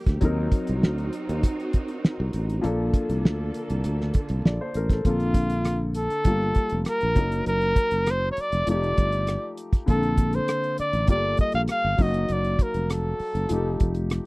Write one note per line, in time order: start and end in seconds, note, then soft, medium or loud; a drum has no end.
0.00 0.19 F3 medium
0.00 0.18 G3 medium
0.00 0.19 A#3 medium
0.00 0.19 F4 medium
0.00 0.20 G4 medium
0.07 0.20 D2 medium
0.07 kick medium
0.07 snare soft
0.07 closed hi-hat soft
0.21 0.47 D#2 medium
0.21 2.59 F#3 medium
0.21 2.60 C4 medium
0.21 2.62 C4 medium
0.21 2.62 D#4 medium
0.21 2.60 D#4 medium
0.21 2.62 F#4 medium
0.21 kick medium
0.21 closed hi-hat medium
0.25 2.61 A#4 medium
0.52 kick medium
0.52 closed hi-hat medium
0.67 0.81 C2 medium
0.67 closed hi-hat medium
0.83 1.09 D2 medium
0.83 snare loud
0.98 closed hi-hat soft
1.13 closed hi-hat medium
1.29 1.41 D#2 medium
1.29 closed hi-hat medium
1.43 kick medium
1.43 closed hi-hat medium
1.60 closed hi-hat soft
1.73 kick medium
1.73 closed hi-hat medium
1.88 closed hi-hat soft
2.05 snare loud
2.20 2.32 C2 medium
2.33 2.59 A1 medium
2.33 closed hi-hat medium
2.50 closed hi-hat soft
2.61 2.89 A#1 loud
2.61 5.03 D3 medium
2.61 5.00 F3 medium
2.61 5.01 A#3 medium
2.61 5.03 A#3 medium
2.61 5.01 D4 medium
2.61 5.03 A4 medium
2.61 4.42 A4 medium
2.61 closed hi-hat medium
2.94 kick medium
2.94 closed hi-hat medium
3.10 3.22 C2 medium
3.10 closed hi-hat medium
3.25 3.50 D2 medium
3.25 snare loud
3.54 closed hi-hat medium
3.70 3.83 C2 medium
3.70 closed hi-hat medium
3.84 4.10 D2 medium
3.84 closed hi-hat medium
4.01 snare soft
4.14 muted fretless electric bass stroke soft
4.14 kick medium
4.14 closed hi-hat medium
4.29 4.42 C2 medium
4.29 closed hi-hat soft
4.45 4.58 A#1 medium
4.45 4.60 D5 medium
4.45 snare loud
4.61 4.75 C5 medium
4.74 5.00 A1 medium
4.74 4.90 A#4 medium
4.74 closed hi-hat medium
4.90 5.08 A4 medium
4.90 kick medium
4.90 snare soft
4.90 closed hi-hat medium
5.05 6.07 A#1 medium
5.05 6.24 D3 medium
5.05 6.24 A#3 medium
5.05 6.25 C4 medium
5.05 5.92 F4 medium
5.05 kick medium
5.05 closed hi-hat medium
5.09 6.26 A4 medium
5.20 closed hi-hat soft
5.34 kick medium
5.34 closed hi-hat medium
5.50 closed hi-hat medium
5.65 cross-stick loud
5.65 closed hi-hat medium
5.95 6.83 A4 medium
5.95 closed hi-hat medium
6.10 closed hi-hat soft
6.25 6.51 G1 medium
6.25 7.16 G3 medium
6.25 7.15 A#3 medium
6.25 7.17 F4 medium
6.25 7.17 A5 medium
6.25 kick medium
6.25 closed hi-hat medium
6.41 cross-stick soft
6.55 kick medium
6.55 closed hi-hat medium
6.69 6.84 F1 medium
6.69 closed hi-hat soft
6.85 cross-stick loud
6.85 closed hi-hat medium
6.89 7.44 A#4 medium
7.01 7.15 A#1 medium
7.01 closed hi-hat soft
7.15 7.42 F#1 medium
7.15 8.64 F#3 medium
7.15 8.64 A#3 soft
7.15 8.65 D#4 medium
7.15 kick loud
7.15 closed hi-hat medium
7.19 8.66 A#4 medium
7.32 closed hi-hat soft
7.46 7.72 F#1 medium
7.46 8.12 A#4 loud
7.46 closed hi-hat medium
7.61 closed hi-hat soft
7.76 kick medium
7.76 closed hi-hat medium
7.91 8.29 F#1 medium
7.91 closed hi-hat soft
8.06 cross-stick loud
8.06 closed hi-hat medium
8.11 8.31 C5 medium
8.32 8.42 C#5 medium
8.37 8.69 D5 medium
8.37 muted fretless electric bass stroke soft
8.37 closed hi-hat medium
8.52 8.65 F1 medium
8.52 closed hi-hat soft
8.67 8.92 F1 medium
8.67 9.85 F3 medium
8.67 9.86 A3 medium
8.67 9.87 D#4 soft
8.67 9.55 D5 medium
8.67 closed hi-hat medium
8.71 9.87 G4 medium
8.83 closed hi-hat soft
8.97 9.36 G1 medium
8.97 kick medium
8.97 closed hi-hat medium
9.12 closed hi-hat soft
9.27 cross-stick loud
9.27 closed hi-hat medium
9.57 closed hi-hat medium
9.73 kick medium
9.73 cross-stick soft
9.73 closed hi-hat soft
9.86 10.38 A#1 loud
9.86 11.05 D3 medium
9.86 11.06 A#3 medium
9.86 11.07 C4 medium
9.86 10.37 A4 medium
9.86 kick medium
9.86 closed hi-hat medium
9.90 11.07 A4 medium
10.03 closed hi-hat soft
10.18 kick medium
10.18 closed hi-hat medium
10.33 10.79 C5 medium
10.33 closed hi-hat soft
10.48 cross-stick loud
10.48 closed hi-hat medium
10.64 closed hi-hat soft
10.78 11.07 D5 medium
10.78 muted fretless electric bass stroke soft
10.78 closed hi-hat medium
10.93 11.09 A1 medium
10.93 closed hi-hat medium
11.07 11.34 G1 medium
11.07 11.98 G3 medium
11.07 11.97 A#3 medium
11.07 11.99 F4 medium
11.07 11.15 G4 medium
11.07 11.38 D5 loud
11.07 kick medium
11.07 closed hi-hat medium
11.15 12.03 A4 medium
11.37 11.54 D#5 medium
11.37 kick medium
11.37 closed hi-hat medium
11.52 11.67 A#1 medium
11.52 11.61 F5 medium
11.52 closed hi-hat soft
11.68 12.04 F5 loud
11.68 cross-stick medium
11.68 closed hi-hat medium
11.85 11.97 G1 medium
11.97 12.24 F#1 medium
11.97 13.46 F#3 medium
11.97 13.47 A#3 medium
11.97 13.47 D#4 medium
11.97 13.48 F#4 medium
11.97 kick loud
11.97 open hi-hat soft
12.02 12.34 D#5 medium
12.14 cross-stick soft
12.14 closed hi-hat soft
12.29 12.55 F#1 medium
12.29 closed hi-hat medium
12.33 12.64 D5 medium
12.44 closed hi-hat soft
12.59 12.91 A#4 medium
12.59 kick medium
12.59 closed hi-hat medium
12.74 13.12 F1 medium
12.74 closed hi-hat soft
12.90 14.07 A4 medium
12.90 cross-stick loud
12.90 closed hi-hat medium
13.20 muted fretless electric bass stroke soft
13.20 open hi-hat soft
13.35 13.47 F#1 medium
13.35 closed hi-hat medium
13.49 13.75 F1 medium
13.49 14.26 F3 medium
13.49 14.26 A3 medium
13.49 14.26 D#4 medium
13.49 closed hi-hat medium
13.53 14.26 G4 medium
13.80 14.18 F1 medium
13.80 kick medium
13.80 closed hi-hat medium
13.95 closed hi-hat soft
14.10 cross-stick loud
14.10 closed hi-hat medium